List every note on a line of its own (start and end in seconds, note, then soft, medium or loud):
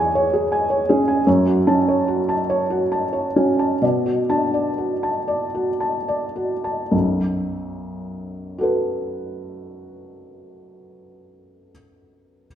0.00 1.23 E2 medium
0.00 1.29 E3 soft
0.00 0.90 C#4 soft
0.00 0.34 G#4 soft
0.00 0.15 C#5 medium
0.00 0.52 G#5 soft
0.00 1.22 C#6 soft
0.00 1.24 G#6 soft
0.00 1.26 C#7 soft
0.15 0.44 C#5 medium
0.34 0.63 G#4 soft
0.52 0.81 G#5 soft
0.70 1.00 C#5 soft
0.89 1.27 C#4 soft
0.89 1.19 G#4 soft
1.08 1.27 G#5 soft
1.27 3.78 F#2 medium
1.27 1.58 C#5 soft
1.47 1.78 F#4 soft
1.67 2.32 C#4 soft
1.67 1.99 A5 medium
1.88 2.20 C#5 soft
2.08 2.40 F#4 soft
2.29 2.61 A5 soft
2.50 2.83 C#5 medium
2.70 3.04 F#4 soft
2.92 3.27 A5 soft
3.13 3.49 C#5 soft
3.36 3.82 C#4 soft
3.36 3.73 F#4 soft
3.59 3.82 A5 soft
3.82 6.88 B2 soft
3.82 4.19 D5 soft
4.06 4.44 F#4 soft
4.29 5.08 D4 soft
4.29 4.68 A5 soft
4.54 4.93 D5 soft
4.78 5.18 F#4 soft
5.03 5.44 A5 soft
5.28 5.70 D5 soft
5.55 5.97 F#4 soft
5.80 6.24 A5 soft
6.08 6.53 D5 soft
6.36 6.81 F#4 soft
6.64 6.92 A5 soft
6.91 11.70 B1 soft
6.91 11.70 F#2 soft
8.58 11.71 F#4 soft
8.58 11.72 A4 soft
8.63 11.73 B4 soft